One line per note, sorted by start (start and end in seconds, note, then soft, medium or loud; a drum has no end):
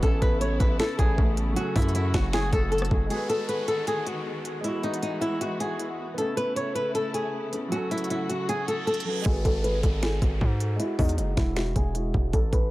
0.00 0.21 A1 loud
0.00 3.07 C#3 medium
0.00 3.07 A3 medium
0.00 1.14 B3 medium
0.00 1.53 B3 medium
0.00 1.16 C#4 medium
0.00 1.55 E4 medium
0.00 0.20 A4 medium
0.00 kick loud
0.00 closed hi-hat medium
0.06 1.18 A4 medium
0.22 0.59 A1 loud
0.22 0.39 B4 medium
0.22 kick loud
0.22 closed hi-hat medium
0.41 0.58 C#5 medium
0.41 closed hi-hat medium
0.60 0.79 A1 loud
0.60 0.77 B4 medium
0.60 kick loud
0.60 closed hi-hat medium
0.79 0.97 A4 medium
0.79 finger snap loud
0.79 snare loud
0.79 closed hi-hat medium
0.99 1.17 A1 loud
0.99 1.53 G#4 medium
0.99 kick loud
0.99 closed hi-hat medium
1.16 1.55 A1 loud
1.16 1.58 A3 medium
1.16 1.56 B3 medium
1.16 1.55 C#4 soft
1.16 kick loud
1.37 closed hi-hat medium
1.53 3.05 F#3 medium
1.53 3.09 F#3 medium
1.53 3.07 C#4 medium
1.53 1.73 F#4 medium
1.53 3.09 F#4 medium
1.53 closed hi-hat medium
1.60 3.09 A4 medium
1.76 2.13 F#2 loud
1.76 1.93 E4 medium
1.76 kick loud
1.76 closed hi-hat medium
1.76 open hi-hat medium
1.82 closed hi-hat medium
1.89 closed hi-hat soft
1.95 2.12 E4 medium
1.95 closed hi-hat medium
2.14 2.51 F#1 loud
2.14 2.31 F#4 medium
2.14 finger snap medium
2.14 kick medium
2.14 snare loud
2.14 closed hi-hat medium
2.33 2.51 G#4 medium
2.33 finger snap loud
2.33 snare loud
2.33 closed hi-hat medium
2.53 2.90 F#1 loud
2.53 2.70 A4 medium
2.53 kick loud
2.53 closed hi-hat medium
2.72 2.89 A4 medium
2.72 closed hi-hat soft
2.78 cross-stick medium
2.78 closed hi-hat medium
2.85 closed hi-hat medium
2.91 3.10 F#1 loud
2.91 kick loud
3.07 4.63 D#3 medium
3.07 4.59 G#3 medium
3.07 4.63 G#3 medium
3.07 7.68 B3 medium
3.07 4.61 F#4 medium
3.07 4.63 F#4 medium
3.07 3.27 G#4 medium
3.07 closed hi-hat medium
3.07 downlifter medium
3.14 4.63 B4 medium
3.29 3.46 A4 medium
3.29 closed hi-hat medium
3.49 3.66 B4 medium
3.49 closed hi-hat medium
3.68 3.85 A4 medium
3.68 closed hi-hat medium
3.87 4.04 G#4 medium
3.87 closed hi-hat medium
4.06 4.61 F#4 medium
4.06 closed hi-hat medium
4.45 closed hi-hat medium
4.61 6.17 E3 medium
4.61 5.57 G#3 medium
4.61 6.17 G#3 medium
4.61 4.81 E4 medium
4.61 5.59 E4 medium
4.61 6.17 F#4 medium
4.61 closed hi-hat medium
4.68 5.60 F#4 medium
4.83 5.00 D#4 medium
4.83 closed hi-hat soft
4.94 closed hi-hat medium
5.03 5.20 D#4 medium
5.03 closed hi-hat medium
5.21 5.38 E4 medium
5.21 closed hi-hat medium
5.41 5.58 F#4 medium
5.41 closed hi-hat medium
5.58 6.17 G#3 medium
5.58 6.18 E4 soft
5.58 6.19 F#4 medium
5.58 6.15 G#4 medium
5.58 closed hi-hat medium
5.79 closed hi-hat medium
6.14 9.23 C#3 medium
6.14 9.23 A3 medium
6.14 7.48 B3 medium
6.14 7.50 C#4 medium
6.14 7.70 E4 medium
6.14 6.35 A4 medium
6.14 closed hi-hat medium
6.22 7.52 A3 medium
6.37 6.54 B4 medium
6.37 closed hi-hat medium
6.56 6.73 C#5 medium
6.56 closed hi-hat medium
6.75 6.92 B4 medium
6.75 closed hi-hat medium
6.95 7.12 A4 medium
6.95 closed hi-hat medium
7.14 7.68 G#4 medium
7.14 closed hi-hat medium
7.51 7.71 B3 soft
7.51 7.70 C#4 soft
7.51 7.73 A4 medium
7.51 closed hi-hat medium
7.68 9.02 F#3 medium
7.68 9.24 F#3 medium
7.68 9.04 C#4 medium
7.68 7.89 F#4 medium
7.68 9.24 F#4 medium
7.68 closed hi-hat medium
7.76 9.06 A4 medium
7.91 8.08 E4 medium
7.91 closed hi-hat medium
7.98 closed hi-hat medium
8.04 closed hi-hat soft
8.10 8.27 E4 medium
8.10 closed hi-hat medium
8.29 8.46 F#4 medium
8.29 closed hi-hat medium
8.49 8.66 G#4 medium
8.49 closed hi-hat medium
8.49 reverse cymbal medium
8.68 8.85 A4 medium
8.68 closed hi-hat medium
8.87 9.04 A4 medium
8.87 closed hi-hat soft
8.94 closed hi-hat medium
9.00 closed hi-hat medium
9.04 9.25 F#3 soft
9.04 9.26 C#4 soft
9.04 9.27 B4 medium
9.22 9.44 G#1 loud
9.22 10.74 G#3 medium
9.22 10.76 F#4 medium
9.22 9.43 G#4 medium
9.22 kick loud
9.22 closed hi-hat medium
9.22 downlifter medium
9.29 10.78 B4 medium
9.45 9.82 G#1 loud
9.45 9.62 A4 medium
9.45 kick loud
9.45 closed hi-hat medium
9.64 9.81 B4 medium
9.64 closed hi-hat medium
9.83 10.20 G#1 loud
9.83 10.00 A4 medium
9.83 kick medium
9.83 closed hi-hat medium
10.03 10.20 G#4 medium
10.03 finger snap medium
10.03 snare loud
10.03 closed hi-hat medium
10.22 10.40 G#1 loud
10.22 10.76 F#4 medium
10.22 kick medium
10.22 closed hi-hat medium
10.41 10.78 G#2 loud
10.41 kick medium
10.60 closed hi-hat medium
10.76 11.91 G#3 medium
10.76 11.93 E4 medium
10.76 10.97 E4 medium
10.76 closed hi-hat medium
10.83 11.94 F#4 medium
10.99 11.20 E2 loud
10.99 11.16 D#4 medium
10.99 kick loud
10.99 closed hi-hat soft
10.99 open hi-hat medium
11.09 closed hi-hat medium
11.18 11.36 F#1 loud
11.18 11.35 D#4 medium
11.18 closed hi-hat medium
11.37 11.74 E1 loud
11.37 11.54 E4 medium
11.37 finger snap medium
11.37 kick medium
11.37 snare medium
11.37 closed hi-hat medium
11.56 11.73 F#4 medium
11.56 finger snap medium
11.56 snare loud
11.56 closed hi-hat medium
11.76 12.13 E1 loud
11.76 12.30 G#4 medium
11.76 kick medium
11.76 closed hi-hat medium
11.93 12.32 G#3 medium
11.93 12.33 E4 soft
11.93 12.34 F#4 medium
11.93 closed hi-hat medium
12.14 12.33 E1 loud
12.14 kick medium
12.33 12.52 A1 loud
12.33 12.50 A4 medium
12.33 kick loud
12.33 closed hi-hat medium
12.52 12.71 A1 loud
12.52 12.69 B4 medium
12.52 kick loud
12.52 closed hi-hat medium